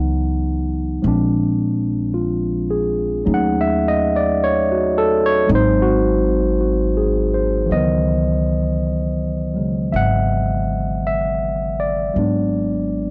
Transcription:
Already playing: C#2 E3 F#3 B3 D#4 F#5
1.02 A#1 F3 G#3 C4
1.08 D4
2.14 F4
2.71 G#4
3.25 D#2 F#3 A3 C#4 D#4
3.34 F#5
3.61 E5
3.88 D#5
4.16 D5
4.44 C#5
4.72 F#4
4.98 A4
5.26 C#5
5.47 G#1 F#3 G#3 C4
5.52 D#4 C5
5.82 F#4
6.61 F#4
6.97 G#4
7.34 C5
7.65 E3
7.69 C#2 F#3 D#5
7.73 D#3 B3
9.54 C#3 F#3 G#3
9.92 G#1 E5 F#5
11.07 E5
11.80 D5
12.14 G#1 F#3 G#3 B3
12.19 D4

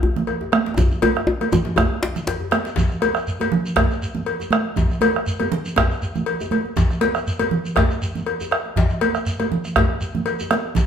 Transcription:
0.03 djembe slap, djembe bass
0.16 bombo rim, high conga, low conga
0.27 bombo rim, cowbell
0.41 djembe tone
0.52 bombo rim, cowbell, high conga
0.66 djembe slap
0.77 bombo rim, bombo low, djembe tone, low conga, djembe bass, shekere
0.91 shekere
1.02 cowbell, high conga, djembe tone
1.16 bombo rim, djembe tone
1.27 djembe tone, high conga
1.41 bombo rim, cowbell, djembe slap, high conga
1.52 djembe tone, low conga, shekere
1.65 djembe slap, high conga
1.76 bombo rim, bombo low, cowbell, djembe slap, djembe tone, high conga, djembe bass, shekere
1.78 djembe tone
2.03 djembe slap
2.15 bombo rim, djembe slap, low conga, shekere
2.27 bombo rim, cowbell, djembe slap, djembe bass, shekere
2.40 djembe bass
2.51 bombo rim, cowbell, djembe slap, high conga
2.65 djembe slap, shekere
2.76 bombo low, djembe slap, high conga, djembe bass, low conga, shekere
2.89 bombo rim, djembe slap, shekere
3.01 bombo rim, cowbell, djembe slap, high conga
3.14 bombo rim, djembe slap, shekere
3.27 shekere
3.40 cowbell, djembe tone, high conga
3.52 low conga
3.65 djembe slap, shekere
3.76 bombo rim, bombo low, cowbell, djembe slap, high conga, djembe bass
3.91 shekere
4.02 shekere
4.15 djembe slap, high conga, low conga
4.26 cowbell
4.39 djembe slap, high conga, djembe tone, shekere
4.51 bombo rim, cowbell, high conga
4.65 high conga
4.76 bombo low, djembe slap, high conga, low conga, djembe bass, shekere
4.91 bombo rim, djembe slap, shekere
5.01 bombo rim, cowbell, high conga
5.16 bombo rim, djembe slap
5.27 shekere
5.40 cowbell, high conga, djembe tone
5.52 low conga
5.65 shekere
5.76 bombo rim, bombo low, cowbell, djembe slap, high conga, djembe bass
5.91 shekere
6.02 shekere
6.15 djembe slap, high conga, low conga, shekere
6.26 cowbell
6.40 djembe slap, high conga, djembe tone, shekere
6.51 cowbell, high conga
6.65 high conga
6.76 bombo low, djembe slap, high conga, low conga, djembe bass, shekere
6.91 bombo rim, djembe slap, shekere
7.01 bombo rim, cowbell, djembe slap, high conga
7.15 bombo rim, djembe slap, shekere
7.27 shekere
7.39 cowbell, high conga, djembe tone
7.51 low conga
7.65 djembe slap, shekere
7.76 bombo rim, bombo low, cowbell, djembe slap, high conga, djembe bass
7.91 shekere
8.02 shekere
8.15 djembe slap, high conga, low conga, shekere
8.26 cowbell
8.41 djembe slap, djembe tone, shekere
8.51 bombo rim, cowbell
8.65 high conga
8.76 bombo rim, bombo low, djembe slap, high conga, low conga, djembe bass, shekere
8.90 shekere
9.01 cowbell, djembe slap, high conga
9.15 bombo rim, shekere
9.26 bombo rim, high conga, shekere
9.40 bombo rim, cowbell, djembe slap, high conga, djembe tone
9.52 high conga, low conga
9.65 bombo rim, shekere
9.76 bombo rim, bombo low, cowbell, djembe slap, high conga, djembe bass
9.89 bombo rim
10.01 high conga, shekere
10.15 high conga, low conga
10.26 bombo rim, cowbell, djembe slap, shekere
10.40 djembe slap, high conga, djembe tone, shekere
10.51 bombo rim, cowbell, djembe slap, high conga
10.65 djembe slap
10.75 bombo low, djembe slap, high conga, low conga, djembe bass, shekere

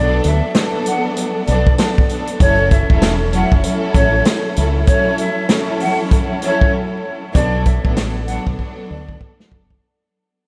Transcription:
Already playing: B1 F#3 B3 D4 A4 D5
0.24 D2 E5, closed hi-hat
0.53 F#3 B3 D4 A4, snare, closed hi-hat
0.86 F#5, closed hi-hat
1.16 closed hi-hat
1.46 B1 F#3 B3 D4 A4 D5, closed hi-hat
1.67 kick
1.77 F#3 B3 D4 A4, snare, closed hi-hat
1.98 kick
2.08 F#3 B3 D4 A4, closed hi-hat
2.27 closed hi-hat
2.39 F#1 F#3 C#4 E4 A4 C#5, kick, closed hi-hat
2.71 E5, kick, closed hi-hat
2.89 E1 F#3 C#4 E4 A4, kick
3.02 snare, closed hi-hat
3.31 F#3 C#4 E4 A4, closed hi-hat
3.36 F#5
3.52 F#1, kick
3.63 F#3 C#4 E4 A4, closed hi-hat
3.94 A1 C#5, kick, closed hi-hat
4.25 snare, closed hi-hat
4.55 C#2 F#3 C#4 E4 A4, closed hi-hat
4.87 F#3 C#4 E4 A4 C#5, kick, closed hi-hat
5.18 E5, closed hi-hat
5.49 F#3 C#4 E4 A4, snare, closed hi-hat
5.80 F#5, open hi-hat
6.11 kick, closed hi-hat
6.42 F#3 C#4 E4 A4 C#5, closed hi-hat
6.61 kick
7.33 B1 F#3 B3 D4 A4 D5, kick, closed hi-hat
7.65 E5, kick, closed hi-hat
7.83 A1 F#3 B3 D4 A4, kick
7.97 snare, closed hi-hat
8.27 F#3 B3 D4 A4 F#5, closed hi-hat
8.47 B1, kick
8.57 F#3 B3 D4 A4, kick
8.90 D2 D5
9.09 kick
9.21 kick
9.40 snare
9.48 F#1 F#3 B3 D4 A4, kick
9.70 kick

